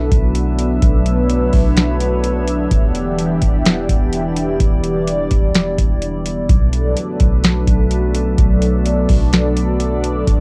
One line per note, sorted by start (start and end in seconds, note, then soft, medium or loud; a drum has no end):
0.00 2.68 F#3 medium
0.00 2.68 A3 medium
0.00 6.45 B3 medium
0.00 2.68 D4 medium
0.00 6.45 D4 medium
0.00 0.80 A4 medium
0.00 0.80 B4 medium
0.00 4.56 E5 medium
0.11 0.79 B1 loud
0.11 kick loud
0.11 closed hi-hat medium
0.35 closed hi-hat medium
0.59 closed hi-hat medium
0.82 1.50 B1 loud
0.82 2.69 B4 medium
0.82 2.69 C#5 medium
0.82 kick loud
0.82 closed hi-hat medium
1.06 closed hi-hat medium
1.30 closed hi-hat medium
1.53 2.67 B1 loud
1.53 kick medium
1.53 open hi-hat soft
1.77 snare loud
1.77 closed hi-hat medium
2.01 closed hi-hat medium
2.24 closed hi-hat medium
2.48 closed hi-hat medium
2.71 3.39 E1 loud
2.71 6.45 E3 medium
2.71 6.45 G3 medium
2.71 6.45 E4 medium
2.71 6.45 G4 medium
2.71 6.45 D5 medium
2.71 kick loud
2.71 closed hi-hat medium
2.95 closed hi-hat medium
3.19 closed hi-hat medium
3.42 3.88 E1 loud
3.42 kick medium
3.42 closed hi-hat medium
3.66 snare loud
3.66 closed hi-hat medium
3.89 4.57 E1 loud
3.89 kick loud
3.89 closed hi-hat medium
4.13 closed hi-hat medium
4.37 closed hi-hat medium
4.60 5.28 E1 loud
4.60 6.47 D5 medium
4.60 kick loud
4.60 closed hi-hat medium
4.84 closed hi-hat medium
5.08 closed hi-hat medium
5.31 5.77 E1 loud
5.31 kick medium
5.31 closed hi-hat medium
5.55 snare loud
5.55 closed hi-hat medium
5.78 6.46 E1 loud
5.78 kick medium
5.78 closed hi-hat medium
6.02 closed hi-hat medium
6.26 closed hi-hat medium
6.49 6.95 B1 loud
6.49 10.24 F#3 medium
6.49 10.24 A3 medium
6.49 10.40 B3 medium
6.49 10.40 D4 medium
6.49 10.24 D4 medium
6.49 10.24 A4 medium
6.49 8.37 B4 medium
6.49 10.40 D5 medium
6.49 kick loud
6.49 closed hi-hat medium
6.73 closed hi-hat medium
6.97 closed hi-hat medium
7.20 7.66 B1 loud
7.20 kick medium
7.20 closed hi-hat medium
7.44 snare loud
7.44 closed hi-hat medium
7.67 8.35 B1 loud
7.67 kick medium
7.67 closed hi-hat medium
7.91 closed hi-hat medium
8.15 closed hi-hat medium
8.38 9.06 B1 loud
8.38 10.25 A4 medium
8.38 kick loud
8.38 closed hi-hat medium
8.62 closed hi-hat medium
8.86 closed hi-hat medium
9.09 10.23 B1 loud
9.09 kick medium
9.09 open hi-hat soft
9.33 snare loud
9.33 closed hi-hat medium
9.56 closed hi-hat medium
9.80 closed hi-hat medium
10.04 closed hi-hat medium
10.27 10.40 E1 loud
10.27 10.40 E3 medium
10.27 10.40 G3 medium
10.27 10.40 E4 medium
10.27 10.40 G4 medium
10.27 10.40 D5 medium
10.27 kick loud
10.27 closed hi-hat medium